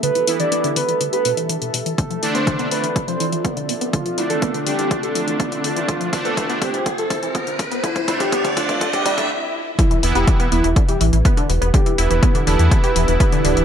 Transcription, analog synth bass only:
\new Staff \with { instrumentName = "Analog synth bass" } { \clef bass \time 4/4 \key e \phrygian \tempo 4 = 123 r8 e,,16 e,,16 r8 e,,16 e,16 r8 e,,16 e,,16 r8 e,,16 e,,16 | r8 f,,16 r8. f,,16 f,,16 r8 a,,16 a,,16 r8 f,,16 r16 | r4. r16 f,16 r2 | r2 r8. a,,16 r4 |
r4. r16 f,16 r2 | r8 e,,16 e,,16 r8 e,,16 e,,16 r8 a,,16 a,,16 r8 e,,16 e,,16 | r8 e,,16 e,,16 r8 e,,16 e,16 r8 e,,16 e,,16 r8 d,,16 d,,16 | }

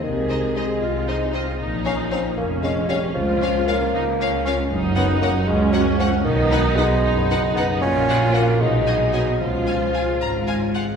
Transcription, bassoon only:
\new Staff \with { instrumentName = "Bassoon" } { \clef bass \time 6/8 \key bes \dorian \tempo 4. = 77 ees4 aes4. c'8 | r8 des'8 c'8 bes8 aes8 g8 | f4 bes4. des'8 | \key fis \major r8 b8 ais8 gis8 fis8 eis8 |
dis4 gis4. b8 | cis'4 ais8 gis4 fis8 | eis2~ eis8 r8 | }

